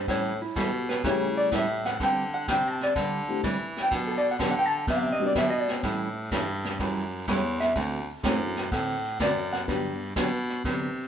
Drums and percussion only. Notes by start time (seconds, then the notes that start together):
0.08 brush sweep, kick, snare
0.56 kick, snare, hi-hat pedal
0.89 snare
1.04 brush sweep, kick, snare
1.52 kick, snare, hi-hat pedal
1.85 snare
2.00 brush sweep, kick, snare
2.48 kick, snare, hi-hat pedal
2.81 snare
2.96 brush sweep, kick, snare
3.44 kick, snare, hi-hat pedal
3.76 snare
3.91 brush sweep, kick, snare
4.39 kick, snare, hi-hat pedal
4.87 brush sweep, kick, snare
5.35 kick, snare, hi-hat pedal
5.68 snare
5.83 brush sweep, kick, snare
6.31 kick, snare, hi-hat pedal
6.64 snare
6.79 brush sweep, kick, snare
7.28 kick, snare, hi-hat pedal
7.61 snare
7.76 brush sweep, kick, snare
8.23 kick, snare, hi-hat pedal
8.56 snare
8.72 brush sweep, kick, snare
9.20 kick, snare, hi-hat pedal
9.53 snare
9.68 brush sweep, kick, snare
10.16 kick, snare, hi-hat pedal
10.49 snare
10.64 brush sweep, kick, snare